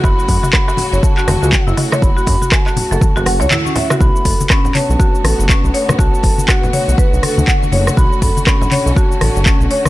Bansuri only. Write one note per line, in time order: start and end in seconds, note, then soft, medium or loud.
0.03 0.50 B5 loud
0.53 0.99 B5 loud
1.03 1.73 A5 loud
2.02 2.54 B5 loud
2.52 2.65 G#5 loud
2.65 3.51 A5 loud
4.01 4.47 B5 loud
4.50 4.76 B5 loud
4.75 5.74 A5 loud
5.99 6.50 A5 loud
6.48 7.48 F#5 loud
7.97 8.20 B5 loud
8.22 8.45 B5 loud
8.47 8.93 B5 loud
8.97 9.67 A5 medium